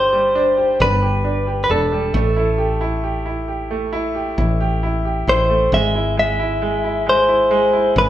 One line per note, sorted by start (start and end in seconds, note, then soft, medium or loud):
0.00 0.76 G1 loud
0.00 0.11 G3 medium
0.00 0.35 D4 medium
0.00 0.57 G4 medium
0.00 0.77 C5 loud
0.13 1.88 G3 medium
0.35 0.78 D4 medium
0.57 1.01 G4 medium
0.80 1.65 G1 loud
0.80 1.23 D4 medium
0.80 1.63 B4 medium
1.02 1.45 G4 medium
1.24 1.68 D4 medium
1.47 2.12 G4 medium
1.64 1.70 B4 medium
1.70 2.11 E1 medium
1.70 2.13 D4 medium
1.70 5.24 A4 medium
1.92 2.14 G3 medium
2.14 4.34 A1 loud
2.14 3.69 A3 medium
2.36 2.79 E4 medium
2.58 3.02 G4 medium
2.81 3.24 E4 medium
3.04 3.47 G4 medium
3.26 3.91 E4 medium
3.48 4.13 G4 medium
3.71 5.46 A3 medium
3.93 4.36 E4 medium
4.15 4.59 G4 medium
4.38 5.23 A1 loud
4.38 4.82 E4 medium
4.60 5.04 G4 medium
4.83 5.26 E4 medium
5.05 5.70 G4 medium
5.27 5.69 A1 medium
5.27 5.71 E4 medium
5.27 5.70 C5 loud
5.50 5.71 A3 medium
5.72 7.92 G#1 loud
5.72 6.16 G#3 medium
5.72 6.15 E5 loud
5.95 6.38 E4 soft
6.17 6.60 G#3 medium
6.17 7.09 E5 loud
6.39 6.83 E4 medium
6.62 7.05 G#3 medium
6.84 7.27 E4 medium
7.07 7.49 G#3 medium
7.07 7.94 C5 loud
7.29 7.72 E4 medium
7.51 7.94 G#3 medium
7.73 8.09 E4 medium
7.96 8.09 G#1 loud
7.96 8.09 G#3 medium
7.96 8.09 B4 medium